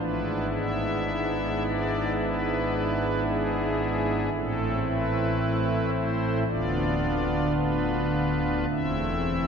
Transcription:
0, 0, Header, 1, 2, 480
1, 0, Start_track
1, 0, Key_signature, 0, "minor"
1, 0, Tempo, 1107011
1, 953, Tempo, 1071429
1, 1908, Time_signature, 4, 2, 24, 8
1, 3353, Tempo, 1136364
1, 4162, End_track
2, 0, Start_track
2, 0, Title_t, "Pipe organ"
2, 0, Program_c, 0, 19
2, 0, Note_on_c, 0, 32, 58
2, 0, Note_on_c, 0, 44, 61
2, 0, Note_on_c, 0, 59, 50
2, 0, Note_on_c, 0, 62, 52
2, 0, Note_on_c, 0, 64, 51
2, 0, Note_on_c, 0, 71, 95
2, 202, Note_off_c, 0, 71, 0
2, 244, Note_on_c, 0, 76, 98
2, 708, Note_off_c, 0, 76, 0
2, 722, Note_on_c, 0, 74, 109
2, 920, Note_off_c, 0, 74, 0
2, 958, Note_on_c, 0, 71, 103
2, 1418, Note_off_c, 0, 71, 0
2, 1434, Note_on_c, 0, 68, 103
2, 1889, Note_off_c, 0, 32, 0
2, 1890, Note_off_c, 0, 44, 0
2, 1890, Note_off_c, 0, 59, 0
2, 1890, Note_off_c, 0, 62, 0
2, 1890, Note_off_c, 0, 64, 0
2, 1896, Note_off_c, 0, 68, 0
2, 1909, Note_on_c, 0, 57, 53
2, 1910, Note_on_c, 0, 33, 71
2, 1910, Note_on_c, 0, 45, 65
2, 1910, Note_on_c, 0, 64, 57
2, 1912, Note_on_c, 0, 60, 56
2, 1913, Note_on_c, 0, 69, 94
2, 2114, Note_off_c, 0, 69, 0
2, 2149, Note_on_c, 0, 71, 97
2, 2614, Note_off_c, 0, 71, 0
2, 2628, Note_on_c, 0, 72, 86
2, 2833, Note_off_c, 0, 72, 0
2, 2851, Note_off_c, 0, 33, 0
2, 2851, Note_off_c, 0, 45, 0
2, 2851, Note_off_c, 0, 57, 0
2, 2851, Note_off_c, 0, 64, 0
2, 2853, Note_off_c, 0, 60, 0
2, 2866, Note_on_c, 0, 26, 69
2, 2866, Note_on_c, 0, 59, 52
2, 2867, Note_on_c, 0, 38, 66
2, 2867, Note_on_c, 0, 62, 51
2, 2868, Note_on_c, 0, 65, 54
2, 2868, Note_on_c, 0, 74, 104
2, 3338, Note_off_c, 0, 74, 0
2, 3352, Note_on_c, 0, 71, 87
2, 3817, Note_off_c, 0, 26, 0
2, 3817, Note_off_c, 0, 38, 0
2, 3817, Note_off_c, 0, 59, 0
2, 3817, Note_off_c, 0, 62, 0
2, 3818, Note_off_c, 0, 65, 0
2, 3820, Note_off_c, 0, 71, 0
2, 3829, Note_on_c, 0, 57, 46
2, 3830, Note_on_c, 0, 28, 52
2, 3831, Note_on_c, 0, 40, 51
2, 3831, Note_on_c, 0, 60, 44
2, 3833, Note_on_c, 0, 64, 43
2, 3833, Note_on_c, 0, 76, 91
2, 4162, Note_off_c, 0, 28, 0
2, 4162, Note_off_c, 0, 40, 0
2, 4162, Note_off_c, 0, 57, 0
2, 4162, Note_off_c, 0, 60, 0
2, 4162, Note_off_c, 0, 64, 0
2, 4162, Note_off_c, 0, 76, 0
2, 4162, End_track
0, 0, End_of_file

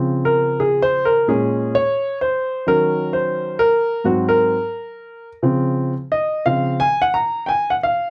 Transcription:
0, 0, Header, 1, 2, 480
1, 0, Start_track
1, 0, Key_signature, -5, "major"
1, 0, Tempo, 689655
1, 1855, Time_signature, 4, 2, 24, 8
1, 5638, End_track
2, 0, Start_track
2, 0, Title_t, "Grand piano"
2, 0, Program_c, 0, 0
2, 0, Note_on_c, 0, 49, 51
2, 0, Note_on_c, 0, 53, 52
2, 0, Note_on_c, 0, 60, 53
2, 175, Note_on_c, 0, 70, 84
2, 417, Note_on_c, 0, 68, 80
2, 422, Note_off_c, 0, 70, 0
2, 574, Note_on_c, 0, 72, 105
2, 581, Note_off_c, 0, 68, 0
2, 733, Note_on_c, 0, 70, 94
2, 739, Note_off_c, 0, 72, 0
2, 864, Note_off_c, 0, 49, 0
2, 866, Note_off_c, 0, 53, 0
2, 869, Note_off_c, 0, 60, 0
2, 889, Note_on_c, 0, 46, 57
2, 892, Note_on_c, 0, 56, 47
2, 896, Note_on_c, 0, 68, 82
2, 897, Note_on_c, 0, 61, 63
2, 899, Note_off_c, 0, 70, 0
2, 1218, Note_on_c, 0, 73, 100
2, 1225, Note_off_c, 0, 68, 0
2, 1234, Note_off_c, 0, 46, 0
2, 1236, Note_off_c, 0, 56, 0
2, 1238, Note_off_c, 0, 61, 0
2, 1514, Note_off_c, 0, 73, 0
2, 1540, Note_on_c, 0, 72, 89
2, 1855, Note_on_c, 0, 51, 53
2, 1860, Note_on_c, 0, 54, 50
2, 1864, Note_on_c, 0, 61, 55
2, 1864, Note_on_c, 0, 70, 96
2, 1867, Note_off_c, 0, 72, 0
2, 2179, Note_on_c, 0, 72, 79
2, 2189, Note_off_c, 0, 70, 0
2, 2499, Note_on_c, 0, 70, 98
2, 2506, Note_off_c, 0, 72, 0
2, 2547, Note_off_c, 0, 51, 0
2, 2549, Note_off_c, 0, 54, 0
2, 2551, Note_off_c, 0, 61, 0
2, 2813, Note_on_c, 0, 44, 52
2, 2818, Note_on_c, 0, 54, 55
2, 2821, Note_on_c, 0, 66, 77
2, 2822, Note_on_c, 0, 60, 59
2, 2827, Note_off_c, 0, 70, 0
2, 2982, Note_off_c, 0, 66, 0
2, 2983, Note_on_c, 0, 70, 100
2, 3156, Note_off_c, 0, 44, 0
2, 3159, Note_off_c, 0, 54, 0
2, 3161, Note_off_c, 0, 60, 0
2, 3671, Note_off_c, 0, 70, 0
2, 3776, Note_on_c, 0, 49, 60
2, 3778, Note_on_c, 0, 53, 54
2, 3781, Note_on_c, 0, 60, 65
2, 4118, Note_off_c, 0, 49, 0
2, 4119, Note_off_c, 0, 53, 0
2, 4120, Note_off_c, 0, 60, 0
2, 4257, Note_on_c, 0, 75, 84
2, 4494, Note_on_c, 0, 49, 53
2, 4494, Note_on_c, 0, 77, 92
2, 4498, Note_on_c, 0, 53, 42
2, 4501, Note_on_c, 0, 60, 55
2, 4503, Note_off_c, 0, 75, 0
2, 4710, Note_off_c, 0, 49, 0
2, 4713, Note_off_c, 0, 53, 0
2, 4714, Note_off_c, 0, 60, 0
2, 4732, Note_on_c, 0, 80, 106
2, 4742, Note_off_c, 0, 77, 0
2, 4883, Note_on_c, 0, 78, 102
2, 4888, Note_off_c, 0, 80, 0
2, 4969, Note_on_c, 0, 82, 93
2, 4976, Note_off_c, 0, 78, 0
2, 5194, Note_on_c, 0, 79, 76
2, 5196, Note_off_c, 0, 82, 0
2, 5209, Note_on_c, 0, 80, 92
2, 5216, Note_off_c, 0, 79, 0
2, 5352, Note_off_c, 0, 80, 0
2, 5361, Note_on_c, 0, 78, 92
2, 5396, Note_off_c, 0, 78, 0
2, 5452, Note_on_c, 0, 77, 93
2, 5638, Note_off_c, 0, 77, 0
2, 5638, End_track
0, 0, End_of_file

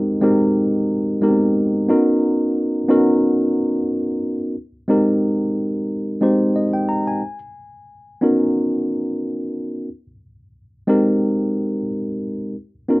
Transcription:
0, 0, Header, 1, 2, 480
1, 0, Start_track
1, 0, Key_signature, -4, "major"
1, 0, Tempo, 666667
1, 1352, Time_signature, 4, 2, 24, 8
1, 9360, End_track
2, 0, Start_track
2, 0, Title_t, "Tine electric piano"
2, 0, Program_c, 0, 4
2, 0, Control_c, 0, 64, 127
2, 0, Note_on_c, 0, 56, 83
2, 0, Note_on_c, 0, 60, 70
2, 0, Note_on_c, 0, 63, 73
2, 0, Note_on_c, 0, 67, 73
2, 0, Note_on_c, 0, 70, 79
2, 153, Note_off_c, 0, 56, 0
2, 153, Note_on_c, 0, 56, 75
2, 158, Note_off_c, 0, 60, 0
2, 158, Note_on_c, 0, 60, 64
2, 165, Note_off_c, 0, 63, 0
2, 165, Note_off_c, 0, 67, 0
2, 165, Note_on_c, 0, 63, 67
2, 165, Note_on_c, 0, 67, 69
2, 171, Note_off_c, 0, 70, 0
2, 171, Note_on_c, 0, 70, 79
2, 496, Note_off_c, 0, 56, 0
2, 498, Note_off_c, 0, 60, 0
2, 502, Note_off_c, 0, 63, 0
2, 502, Note_off_c, 0, 67, 0
2, 505, Note_off_c, 0, 70, 0
2, 874, Note_on_c, 0, 56, 75
2, 879, Note_on_c, 0, 59, 50
2, 885, Note_on_c, 0, 63, 64
2, 887, Note_on_c, 0, 67, 64
2, 889, Note_on_c, 0, 70, 73
2, 926, Note_off_c, 0, 59, 0
2, 926, Note_on_c, 0, 60, 58
2, 1353, Note_off_c, 0, 56, 0
2, 1356, Note_off_c, 0, 63, 0
2, 1356, Note_on_c, 0, 59, 73
2, 1359, Note_off_c, 0, 67, 0
2, 1360, Control_c, 0, 64, 0
2, 1361, Note_off_c, 0, 70, 0
2, 1363, Note_on_c, 0, 61, 65
2, 1365, Note_on_c, 0, 63, 70
2, 1367, Note_on_c, 0, 66, 70
2, 1371, Note_on_c, 0, 70, 80
2, 1379, Note_off_c, 0, 60, 0
2, 1504, Control_c, 0, 64, 127
2, 2030, Note_off_c, 0, 59, 0
2, 2033, Note_off_c, 0, 61, 0
2, 2034, Note_off_c, 0, 63, 0
2, 2035, Note_off_c, 0, 66, 0
2, 2037, Note_off_c, 0, 70, 0
2, 2076, Note_on_c, 0, 59, 77
2, 2080, Note_on_c, 0, 61, 73
2, 2082, Note_on_c, 0, 63, 73
2, 2088, Note_on_c, 0, 66, 73
2, 2092, Note_on_c, 0, 70, 88
2, 2750, Note_off_c, 0, 59, 0
2, 2751, Note_off_c, 0, 61, 0
2, 2753, Note_off_c, 0, 63, 0
2, 2756, Note_off_c, 0, 66, 0
2, 2758, Note_off_c, 0, 70, 0
2, 3282, Control_c, 0, 64, 0
2, 3399, Control_c, 0, 64, 127
2, 3513, Note_on_c, 0, 56, 75
2, 3519, Note_on_c, 0, 60, 69
2, 3525, Note_on_c, 0, 63, 75
2, 3528, Note_on_c, 0, 67, 69
2, 3532, Note_on_c, 0, 70, 82
2, 3856, Note_off_c, 0, 56, 0
2, 3859, Note_off_c, 0, 60, 0
2, 3862, Note_off_c, 0, 63, 0
2, 3863, Note_off_c, 0, 67, 0
2, 3865, Note_off_c, 0, 70, 0
2, 4471, Note_on_c, 0, 56, 69
2, 4476, Note_on_c, 0, 60, 67
2, 4479, Note_on_c, 0, 63, 62
2, 4483, Note_on_c, 0, 67, 67
2, 4487, Note_on_c, 0, 72, 71
2, 4721, Note_on_c, 0, 75, 54
2, 4815, Note_off_c, 0, 56, 0
2, 4817, Note_off_c, 0, 60, 0
2, 4819, Note_off_c, 0, 63, 0
2, 4821, Note_off_c, 0, 67, 0
2, 4823, Note_off_c, 0, 72, 0
2, 4840, Note_off_c, 0, 75, 0
2, 4849, Note_on_c, 0, 79, 57
2, 4951, Note_off_c, 0, 79, 0
2, 4958, Note_on_c, 0, 82, 69
2, 5078, Note_off_c, 0, 82, 0
2, 5094, Note_on_c, 0, 80, 59
2, 5202, Control_c, 0, 64, 0
2, 5316, Note_off_c, 0, 80, 0
2, 5331, Control_c, 0, 64, 127
2, 5913, Note_on_c, 0, 59, 73
2, 5917, Note_on_c, 0, 61, 65
2, 5921, Note_on_c, 0, 63, 69
2, 5926, Note_on_c, 0, 66, 64
2, 5930, Note_on_c, 0, 70, 76
2, 6086, Note_off_c, 0, 59, 0
2, 6088, Note_off_c, 0, 61, 0
2, 6090, Note_off_c, 0, 63, 0
2, 6093, Note_off_c, 0, 66, 0
2, 6095, Note_off_c, 0, 70, 0
2, 7122, Control_c, 0, 64, 0
2, 7250, Control_c, 0, 64, 127
2, 7828, Note_on_c, 0, 56, 80
2, 7832, Note_on_c, 0, 60, 78
2, 7840, Note_on_c, 0, 63, 69
2, 7842, Note_on_c, 0, 67, 74
2, 7844, Note_on_c, 0, 70, 87
2, 8506, Note_off_c, 0, 56, 0
2, 8508, Note_off_c, 0, 60, 0
2, 8512, Note_off_c, 0, 63, 0
2, 8513, Note_off_c, 0, 67, 0
2, 8514, Note_off_c, 0, 70, 0
2, 9042, Control_c, 0, 64, 0
2, 9178, Control_c, 0, 64, 127
2, 9277, Note_on_c, 0, 59, 68
2, 9280, Note_on_c, 0, 61, 64
2, 9285, Note_on_c, 0, 63, 62
2, 9289, Note_on_c, 0, 66, 60
2, 9291, Note_on_c, 0, 70, 71
2, 9360, Note_off_c, 0, 59, 0
2, 9360, Note_off_c, 0, 61, 0
2, 9360, Note_off_c, 0, 63, 0
2, 9360, Note_off_c, 0, 66, 0
2, 9360, Note_off_c, 0, 70, 0
2, 9360, End_track
0, 0, End_of_file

